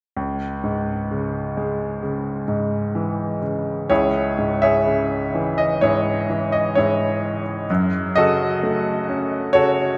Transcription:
grand piano
0.17 C#2
0.64 G#2
1.11 C#3
1.57 G#3
2.03 C#3
2.48 G#2
2.95 E3
3.42 C#3
3.90 C#2 E4 G#4 C#5
4.38 G#2
4.62 G#4 C#5 E5
4.86 C#3
5.35 E3
5.58 D#5
5.81 G#2 E4 G#4 C#5
6.29 E3
6.52 D#5
6.75 G#2 E4 G#4 C#5
7.70 F#2
8.16 C#3 F#4 A4 D#5
8.63 A3
9.09 C#4
9.53 C#3 F#4 A4 C#5

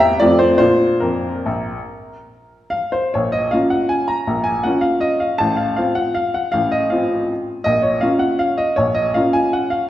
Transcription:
upright piano
Already playing: E2 A#3 C4 G4 G5 A#5
0.00 E5
0.20 F2 A3 C4 F4 D5
0.39 C5
0.58 A#2 D4 F4 C5
1.00 F2 A#4
1.46 A#1
2.70 F5
2.92 C5
3.14 A#1 A#2 C#5
3.32 D#5
3.51 A#3 C#4 F4 F5
3.70 F#5
3.89 G#5
4.08 A#5
4.27 A#1 A#2
4.44 G#5
4.63 A#3 C#4 F4 F#5
4.81 F5
5.01 D#5
5.20 F5
5.38 A1 A2 A5
5.56 F5
5.76 C4 F4 F5
5.95 F#5
6.15 F5
6.34 F#5
6.52 A1 A2 F5
6.72 D#5
6.90 C4 F4 F5
7.64 A#1 A#2 D#5
7.82 C#5
8.01 A#3 C#4 F4 F5
8.19 F#5
8.39 F5
8.58 D#5
8.76 A#1 A#2 C#5
8.95 D#5
9.14 A#3 C#4 F4 F5
9.33 G#5
9.53 F#5
9.70 F5

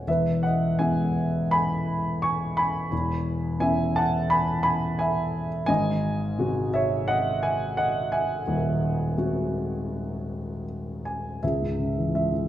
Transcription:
grand piano
0.07 E1 E2 B4 E5
0.43 D#5 F#5
0.79 G#3 B3 E4 E5 G#5
1.51 G#5 B5
2.22 G#5 C#6
2.57 G#5 B5
2.91 E1 E2
3.59 B3 C#4 E4 E5 G#5
3.96 F#5 A5
4.30 G#5 B5
4.63 G#5 B5
4.99 E5 G#5
5.66 G#1 G#2 D#5 G#5
6.38 C3 G#3 F#4
6.74 C#5 E5
7.08 D#5 F#5
7.43 E5 G#5
7.77 D#5 F#5
8.12 E5 G#5
8.47 D#1 D#2
9.18 G#3 C4 F#4
11.05 G#5
11.43 C#2 G#4 E5
11.62 G#2
11.79 C#3
11.97 E3
12.15 G#3 E5
12.32 E3

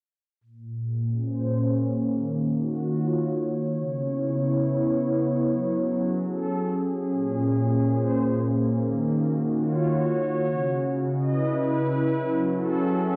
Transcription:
analog synth pad
0.41 A#2
0.62 G#4
0.75 A#3
1.01 C#4
1.18 C5
2.09 D#3
2.43 F#4
2.81 F4
2.86 C#5
3.76 C#3
3.95 B3 E4
5.44 F#3
5.68 C#4
5.73 G#4
6.20 A4
7.12 A#2
7.47 A#3
7.89 C5
8.80 D#3
9.05 F#4
9.57 F4 C#5
10.48 C#3
10.70 C#4
11.10 D#5
11.22 E4 B4
12.15 F#3
12.48 A4
12.57 G#4
12.93 E5

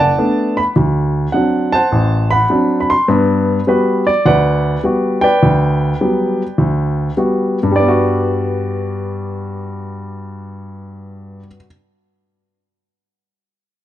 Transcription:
grand piano
0.00 D5 F#5 A5
0.18 A3 B3 D4
0.57 B5
0.76 D2
1.32 F#3 C4 D4 F#5
1.72 C5 F#5 A5
1.92 A1
2.30 F#5 B5
2.50 F#3 C4 D4
2.80 B5
2.90 C6
3.08 G2 B3
3.67 G3 B3 F#4 B4
4.07 D5
4.26 D2 B4 D5 F#5
4.84 G3 B3 F#4
5.21 B4 D5 G5
5.43 D2
6.01 F#3 G3 B3
6.58 D2
7.17 G3 B3 F#4
7.63 G2
7.71 G3
7.76 D5
7.80 B3
7.88 F#4

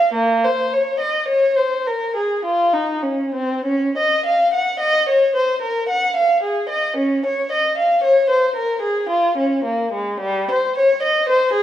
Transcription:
violin
Already playing: F5
0.13 A#3
0.44 C5
0.73 C#5
1.00 D#5
1.28 C#5
1.57 C5
1.87 A#4
2.16 G#4
2.45 F4
2.73 D#4
3.02 C#4
3.35 C4
3.65 C#4
3.98 D#5
4.26 F5
4.54 F#5
4.80 D#5
5.09 C#5
5.35 C5
5.62 A#4
5.89 F#5
6.16 F5
6.43 G#4
6.69 D#5
6.97 C#4
7.26 C#5
7.52 D#5
7.78 F5
8.04 C#5
8.30 C5
8.56 A#4
8.82 G#4
9.09 F4
9.38 C#4
9.65 A#3
9.93 G#3
10.20 G3
10.51 C5
10.78 C#5
11.03 D#5
11.29 C5
11.53 G#4

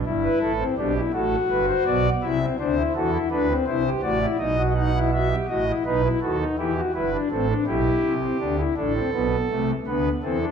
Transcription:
pipe organ
0.06 G1 G2 E4
0.23 B4
0.41 A1 A2 A4
0.59 C4
0.78 B1 B2 D4 G4
0.96 E4
1.13 A1 A2 F#4 A4
1.50 G1 G2 B4
1.68 C5
1.87 B1 B2 D5
2.23 C2 C3 E4 E5
2.41 C4
2.59 D2 D3 D4 C5
2.77 E4
2.95 E2 E3 F#4 A4
3.12 E4
3.31 D2 D3 D4 B4
3.49 C4
3.67 C2 C3 E4 C5
3.85 G4
4.03 A1 A2 F#4 D5
4.21 E4
4.39 B1 B2 D#4 D#5
4.57 F#4
4.76 D#4 F#5
4.95 E4
5.13 F#4 E5
5.30 G4
5.49 A1 A2 F#4 D#5
5.68 E4
5.85 B1 B2 D#4 B4
6.04 E4
6.22 D#2 D#3 F#4 A4
6.41 D#4
6.58 E2 E3 E4 G4
6.77 F#4
6.95 G1 G2 E4 B4
7.13 D4
7.31 A1 A2 C4 A4
7.48 D4
7.66 B1 B2 E4 G4
8.04 C2 C3
8.22 C4
8.40 D2 D3 D4
8.58 E4
8.77 A1 A2 D4 A4
8.95 C4
9.13 B1 B2 B3
9.50 C2 C3 A3
9.87 D2 D3 B3 B4
10.23 E2 E3 C4 A4
10.42 D4

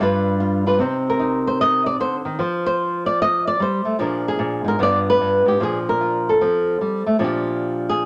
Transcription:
nylon-string guitar
0.00 G2 G3 D4 F4 B4
0.40 F4
0.66 D4 F4 B4
0.79 C3 C4 D#4 G4 C5
1.10 A#4
1.19 D#4
1.47 C5
1.61 D#5
1.86 D5
2.00 D3 C5
2.25 D#3
2.39 F3 C5
2.66 C5
3.06 D5
3.22 D#5
3.47 D5
3.60 G3 C5
3.85 A3
3.99 A#2 F3 D4 G#4 A#4
4.28 G#4
4.39 A#2
4.64 G#2 A#4
4.79 G2 B3 D4 F4 D5
5.10 B4
5.21 G2
5.45 G#2 G4
5.60 A#2 F3 D4 G#4
5.89 A#4
6.01 F4
6.29 A4
6.41 F3 C4
6.81 G3
7.07 A3
7.19 A#2 F3 D4 F4
7.24 G4
7.89 G#4

